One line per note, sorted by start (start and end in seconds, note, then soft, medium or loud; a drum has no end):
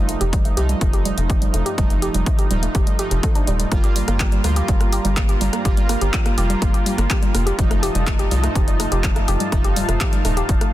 0.00 0.16 F1 loud
0.00 10.73 G2 medium
0.00 0.54 F3 medium
0.00 10.73 F3 medium
0.00 0.54 A3 medium
0.00 0.54 D#4 loud
0.09 0.14 A3 medium
0.09 closed hi-hat medium
0.21 0.52 F1 medium
0.21 0.26 G4 loud
0.21 closed hi-hat soft
0.33 0.38 G3 medium
0.33 kick loud
0.33 closed hi-hat medium
0.45 0.50 A3 medium
0.45 closed hi-hat soft
0.57 0.75 C2 loud
0.57 1.75 F3 medium
0.57 1.75 A3 medium
0.57 1.75 D#4 loud
0.57 0.62 G4 loud
0.57 closed hi-hat medium
0.69 0.74 G3 medium
0.69 closed hi-hat soft
0.81 1.13 F1 loud
0.81 0.86 A3 medium
0.81 kick loud
0.81 closed hi-hat medium
0.93 0.98 G4 loud
0.93 closed hi-hat soft
1.05 1.10 G3 medium
1.05 closed hi-hat medium
1.18 1.49 F1 medium
1.18 1.23 A3 medium
1.18 closed hi-hat soft
1.30 1.35 G4 loud
1.30 kick loud
1.30 closed hi-hat medium
1.42 1.47 G3 medium
1.42 closed hi-hat soft
1.54 1.63 F1 medium
1.54 1.59 A3 medium
1.54 closed hi-hat medium
1.66 1.71 G4 loud
1.66 closed hi-hat soft
1.78 2.09 F1 medium
1.78 2.48 F3 medium
1.78 1.83 G3 medium
1.78 2.48 A3 medium
1.78 2.48 D#4 loud
1.78 kick loud
1.78 closed hi-hat medium
1.90 1.95 A3 medium
1.90 closed hi-hat soft
2.02 2.07 G4 loud
2.02 closed hi-hat medium
2.14 2.23 F1 medium
2.14 2.19 G3 medium
2.14 closed hi-hat soft
2.26 2.31 A3 medium
2.26 kick loud
2.26 closed hi-hat medium
2.39 2.44 G4 loud
2.39 closed hi-hat soft
2.51 2.69 D#1 medium
2.51 2.97 F3 medium
2.51 2.56 G3 medium
2.51 2.97 A3 medium
2.51 2.97 D#4 loud
2.51 closed hi-hat medium
2.63 2.68 A3 medium
2.63 closed hi-hat soft
2.75 2.84 F1 loud
2.75 2.80 G4 loud
2.75 kick loud
2.75 closed hi-hat medium
2.87 2.92 G3 medium
2.87 closed hi-hat soft
2.99 3.69 F3 medium
2.99 3.69 A3 medium
2.99 3.69 D#4 medium
2.99 3.07 G4 loud
2.99 closed hi-hat medium
3.11 3.20 F1 loud
3.11 3.19 G4 medium
3.11 closed hi-hat soft
3.23 3.31 A4 medium
3.23 kick loud
3.23 closed hi-hat medium
3.35 3.43 D4 loud
3.35 closed hi-hat soft
3.47 3.65 D#1 medium
3.47 3.50 G3 loud
3.47 closed hi-hat medium
3.60 3.65 G3 medium
3.60 closed hi-hat soft
3.71 4.03 G1 loud
3.71 4.41 G3 medium
3.71 4.41 A#3 medium
3.71 3.77 A#3 medium
3.71 4.41 F4 loud
3.71 7.55 G4 medium
3.71 7.55 F5 medium
3.71 7.55 A#5 medium
3.71 kick loud
3.71 cross-stick medium
3.71 closed hi-hat medium
3.84 3.89 G4 loud
3.84 closed hi-hat soft
3.96 4.01 G3 medium
3.96 open hi-hat loud
4.08 4.39 G1 medium
4.08 4.13 A#3 medium
4.08 cross-stick medium
4.08 closed hi-hat soft
4.20 4.25 G4 loud
4.20 kick loud
4.20 clap loud
4.20 closed hi-hat medium
4.32 4.37 G3 medium
4.32 closed hi-hat soft
4.44 4.62 D2 loud
4.44 5.62 G3 medium
4.44 5.62 A#3 medium
4.44 4.49 A#3 medium
4.44 5.62 F4 loud
4.44 cross-stick medium
4.44 open hi-hat medium
4.56 4.61 G4 loud
4.56 closed hi-hat soft
4.68 5.00 G1 loud
4.68 4.73 G3 medium
4.68 kick loud
4.68 closed hi-hat medium
4.81 4.86 A#3 medium
4.81 cross-stick medium
4.81 closed hi-hat soft
4.93 4.98 G4 loud
4.93 open hi-hat loud
5.05 5.36 G1 medium
5.05 5.10 G3 medium
5.05 closed hi-hat soft
5.17 5.22 A#3 medium
5.17 kick loud
5.17 cross-stick medium
5.17 clap loud
5.17 closed hi-hat medium
5.29 5.34 G4 loud
5.29 closed hi-hat soft
5.41 5.50 G1 medium
5.41 5.46 G3 medium
5.41 open hi-hat medium
5.53 5.58 A#3 medium
5.53 cross-stick medium
5.53 closed hi-hat soft
5.65 5.96 G1 medium
5.65 6.35 G3 medium
5.65 6.35 A#3 medium
5.65 6.35 F4 loud
5.65 5.70 G4 loud
5.65 kick loud
5.65 closed hi-hat medium
5.77 5.82 G3 medium
5.77 closed hi-hat soft
5.89 5.94 A#3 medium
5.89 cross-stick medium
5.89 open hi-hat loud
6.01 6.10 G1 medium
6.01 6.06 G4 loud
6.01 closed hi-hat soft
6.13 6.18 G3 medium
6.13 kick loud
6.13 clap loud
6.13 closed hi-hat medium
6.26 6.31 A#3 medium
6.26 cross-stick medium
6.26 closed hi-hat soft
6.38 6.56 F1 medium
6.38 7.56 G3 medium
6.38 7.56 A#3 medium
6.38 7.56 F4 loud
6.38 6.43 G4 loud
6.38 open hi-hat medium
6.50 6.55 G3 medium
6.50 closed hi-hat soft
6.62 6.71 G1 loud
6.62 6.67 A#3 medium
6.62 kick loud
6.62 cross-stick medium
6.62 closed hi-hat medium
6.74 6.79 G4 loud
6.74 closed hi-hat soft
6.86 6.91 G3 medium
6.86 open hi-hat loud
6.98 7.07 G1 loud
6.98 7.03 A#3 medium
6.98 cross-stick medium
6.98 closed hi-hat soft
7.10 7.15 G4 loud
7.10 kick loud
7.10 clap loud
7.10 closed hi-hat medium
7.22 7.27 G3 medium
7.22 closed hi-hat soft
7.34 7.52 F1 medium
7.34 7.39 A#3 medium
7.34 cross-stick medium
7.34 open hi-hat medium
7.46 7.52 G4 loud
7.46 closed hi-hat soft
7.59 7.90 F1 loud
7.59 8.28 F3 medium
7.59 7.64 G3 medium
7.59 8.28 A3 medium
7.59 8.28 D#4 loud
7.59 10.73 F4 medium
7.59 9.50 D#5 medium
7.59 10.73 A5 medium
7.59 kick loud
7.59 closed hi-hat medium
7.71 7.76 A3 medium
7.71 cross-stick medium
7.71 closed hi-hat soft
7.83 7.88 G4 loud
7.83 open hi-hat loud
7.95 8.26 F1 medium
7.95 8.00 G3 medium
7.95 closed hi-hat soft
8.07 8.12 A3 medium
8.07 kick loud
8.07 cross-stick medium
8.07 clap loud
8.07 closed hi-hat medium
8.19 8.24 G4 loud
8.19 closed hi-hat soft
8.31 8.49 C2 loud
8.31 9.49 F3 medium
8.31 8.36 G3 medium
8.31 9.49 A3 medium
8.31 9.49 D#4 loud
8.31 open hi-hat medium
8.43 8.48 A3 medium
8.43 cross-stick medium
8.43 closed hi-hat soft
8.55 8.87 F1 loud
8.55 8.60 G4 loud
8.55 kick loud
8.55 closed hi-hat medium
8.68 8.73 G3 medium
8.68 closed hi-hat soft
8.80 8.85 A3 medium
8.80 cross-stick medium
8.80 open hi-hat loud
8.92 9.23 F1 medium
8.92 8.97 G4 loud
8.92 closed hi-hat soft
9.04 9.09 G3 medium
9.04 kick loud
9.04 clap loud
9.04 closed hi-hat medium
9.16 9.21 A3 medium
9.16 cross-stick medium
9.16 closed hi-hat soft
9.28 9.37 F1 medium
9.28 9.33 G4 loud
9.28 open hi-hat medium
9.40 9.45 G3 medium
9.40 closed hi-hat soft
9.52 9.83 F1 medium
9.52 10.22 F3 loud
9.52 10.22 A3 medium
9.52 9.57 A3 medium
9.52 10.22 D#4 loud
9.52 10.73 F5 medium
9.52 kick loud
9.52 cross-stick medium
9.52 closed hi-hat medium
9.64 9.69 G4 loud
9.64 closed hi-hat soft
9.76 9.82 G3 medium
9.76 open hi-hat loud
9.89 9.98 F1 medium
9.89 9.94 A3 medium
9.89 cross-stick medium
9.89 closed hi-hat soft
10.01 10.06 G4 loud
10.01 kick loud
10.01 clap loud
10.01 closed hi-hat medium
10.13 10.18 G3 medium
10.13 closed hi-hat soft
10.25 10.43 D#1 medium
10.25 10.71 F3 medium
10.25 10.71 A3 medium
10.25 10.30 A3 medium
10.25 10.71 D#4 loud
10.25 cross-stick medium
10.25 open hi-hat medium
10.37 10.42 G4 loud
10.37 closed hi-hat soft
10.49 10.58 F1 loud
10.49 10.54 G3 medium
10.49 kick loud
10.49 closed hi-hat medium
10.61 10.66 A3 medium
10.61 cross-stick medium
10.61 closed hi-hat soft